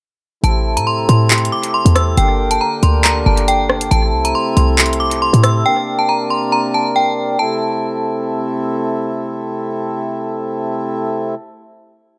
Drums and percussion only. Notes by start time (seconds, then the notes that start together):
0.44 closed hi-hat
0.77 closed hi-hat
1.09 closed hi-hat
1.30 clap, closed hi-hat
1.38 closed hi-hat
1.45 closed hi-hat
1.63 closed hi-hat
1.86 closed hi-hat
1.96 cross-stick, closed hi-hat
2.17 closed hi-hat
2.51 closed hi-hat
2.83 closed hi-hat
3.04 clap
3.37 closed hi-hat
3.48 closed hi-hat
3.69 cross-stick
3.81 closed hi-hat
3.91 closed hi-hat
4.25 closed hi-hat
4.57 closed hi-hat
4.78 clap, closed hi-hat
4.86 closed hi-hat
4.93 closed hi-hat
5.11 closed hi-hat
5.34 closed hi-hat
5.44 cross-stick, closed hi-hat